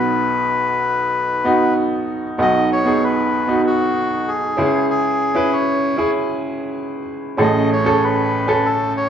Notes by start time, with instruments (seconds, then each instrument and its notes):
Already playing: upright piano B1 B2 B3 D#4 F#4, melodica B4
1.44 upright piano B3 D#4 F#4
2.38 upright piano B1 B2 B3 D#4 F#4, melodica D#5
2.73 melodica C#5
2.85 upright piano B3 D#4 G#4
3.04 melodica B4
3.47 upright piano B3 D#4 F#4
3.67 melodica F#4
4.28 melodica G#4
4.57 upright piano C#2 C#3 C#4 E4 G#4
4.90 melodica G#4
5.35 upright piano C#4 E4 B4
5.53 melodica C#5
5.97 upright piano C#4 E4 G#4
7.37 upright piano A1 A2 C#4 G#4 A4
7.42 melodica D#5
7.73 melodica C#5
7.84 upright piano C#4 G#4 A4
8.03 melodica B4
8.47 upright piano C#4 A4 G#5
8.65 melodica A4
8.97 melodica C#5